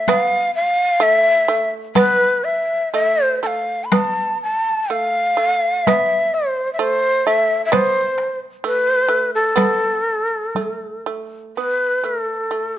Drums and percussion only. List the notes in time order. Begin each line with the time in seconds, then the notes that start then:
0.08 taiko rim, taiko high
1.95 taiko rim, taiko high
3.92 taiko rim, taiko high
5.88 taiko rim, taiko high
7.73 taiko rim, taiko high
8.18 taiko rim
9.57 taiko rim, taiko high
10.55 taiko high